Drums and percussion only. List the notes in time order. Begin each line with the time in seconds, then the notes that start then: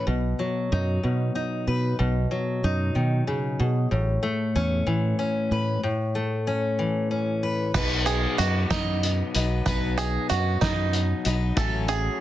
7.75 kick, crash
8.07 closed hi-hat
8.39 closed hi-hat
8.71 kick, snare, closed hi-hat
9.03 closed hi-hat
9.35 closed hi-hat
9.66 kick, closed hi-hat
9.99 closed hi-hat
10.30 closed hi-hat
10.62 kick, snare, closed hi-hat
10.93 closed hi-hat
11.25 closed hi-hat
11.57 kick, closed hi-hat
11.88 closed hi-hat